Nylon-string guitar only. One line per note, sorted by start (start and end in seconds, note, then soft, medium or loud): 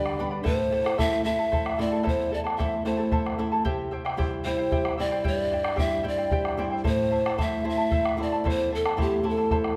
0.00 0.42 D3 medium
0.00 0.17 G3 soft
0.00 0.17 B3 soft
0.00 0.18 D4 soft
0.20 0.45 G3 soft
0.20 0.45 B3 soft
0.20 0.45 D4 medium
0.44 2.01 A2 medium
0.99 1.24 A3 soft
0.99 1.24 C4 soft
0.99 1.24 E4 soft
1.25 1.77 A3 soft
1.25 1.77 C4 soft
1.25 1.77 E4 soft
1.79 2.31 A3 soft
1.79 2.31 C4 soft
1.79 2.31 E4 soft
2.05 3.61 E2 medium
2.59 2.84 A3 soft
2.59 2.84 C4 soft
2.59 2.84 E4 soft
2.85 3.37 A3 soft
2.85 3.37 C4 soft
2.85 3.37 E4 soft
3.39 3.65 A3 soft
3.39 3.65 C4 soft
3.39 3.65 E4 soft
3.65 5.21 C3 medium
4.17 4.44 G3 soft
4.17 4.44 C4 soft
4.17 4.45 E4 soft
4.45 4.97 G3 soft
4.45 4.97 C4 soft
4.45 4.98 E4 soft
4.99 5.51 G3 soft
4.99 5.51 C4 soft
4.99 5.51 E4 soft
5.25 6.81 G2 medium
5.78 6.03 G3 soft
5.78 6.04 C4 soft
5.78 6.03 E4 soft
6.04 6.56 G3 soft
6.04 6.57 C4 soft
6.04 6.57 E4 soft
6.57 6.84 G3 soft
6.57 6.84 C4 soft
6.57 6.84 E4 medium
6.85 8.41 A2 medium
7.38 7.63 A3 soft
7.38 7.64 C4 soft
7.38 7.64 E4 soft
7.65 8.16 A3 soft
7.65 8.17 C4 soft
7.65 8.17 E4 soft
8.17 8.69 A3 soft
8.17 8.70 C4 soft
8.17 8.70 E4 medium
8.44 9.76 E2 medium
8.97 9.22 A3 soft
8.97 9.22 C4 soft
8.97 9.23 E4 soft
9.23 9.75 A3 soft
9.23 9.75 C4 soft
9.23 9.76 E4 soft